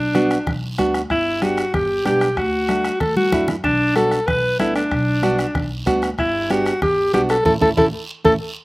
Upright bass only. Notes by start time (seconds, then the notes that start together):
Already playing: B1
0.47 B1
0.78 D2
1.10 G1
1.74 G1
2.06 B1
2.37 D2
3.01 D2
3.32 F#2
3.64 B1
4.28 B1
4.60 D2
4.91 B1
5.55 B1
5.86 D2
6.19 G1
6.82 G1
7.13 B1
7.46 A1
7.62 A1
7.77 A1
8.25 A1